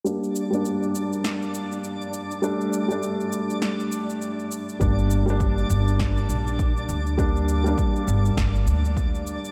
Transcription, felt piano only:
X:1
M:4/4
L:1/16
Q:"Swing 16ths" 1/4=101
K:Gm
V:1 name="Felt piano"
[G,B,D]3 [G,B,D]12- [G,B,D] | [G,A,D]3 [G,A,D]12- [G,A,D] | [G,B,D]3 [G,B,D]12- [G,B,D] | [G,B,D]3 [G,B,D]12- [G,B,D] |]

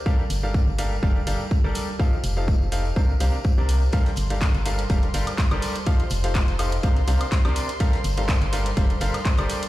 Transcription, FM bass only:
X:1
M:4/4
L:1/16
Q:"Swing 16ths" 1/4=124
K:Gm
V:1 name="FM bass" clef=bass
z2 G,,,3 G,,,3 F,,,2 G,,, z2 G,,, z2 | z2 F,,,3 F,,,3 C,,2 C,, z2 C,,3 | z2 G,,,3 G,,,3 F,,,2 G,,, z2 G,,, z2 | z2 F,,,3 F,,,3 C,,2 C,, z2 C,, z2 |
z2 G,,,3 G,,,3 F,,,2 G,,, z2 G,,, z2 |]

